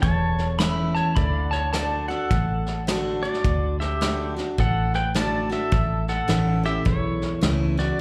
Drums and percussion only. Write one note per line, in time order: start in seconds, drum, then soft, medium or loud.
0.03 kick loud
0.03 snare soft
0.38 snare soft
0.60 snare loud
0.60 hi-hat pedal medium
0.95 snare soft
1.17 kick loud
1.17 snare soft
1.52 snare soft
1.73 snare loud
1.73 hi-hat pedal medium
2.10 snare soft
2.31 kick loud
2.31 snare soft
2.66 snare soft
2.88 snare loud
2.88 hi-hat pedal loud
3.23 snare soft
3.34 snare soft
3.44 kick loud
3.44 snare soft
3.80 snare soft
4.02 snare loud
4.02 hi-hat pedal medium
4.37 snare soft
4.58 kick loud
4.58 snare soft
4.94 snare soft
5.15 snare loud
5.15 hi-hat pedal loud
5.51 snare soft
5.72 kick loud
5.72 snare soft
6.08 snare soft
6.29 snare loud
6.29 hi-hat pedal medium
6.65 snare soft
6.86 kick loud
6.86 snare soft
7.22 snare soft
7.43 snare loud
7.43 hi-hat pedal medium
7.78 snare soft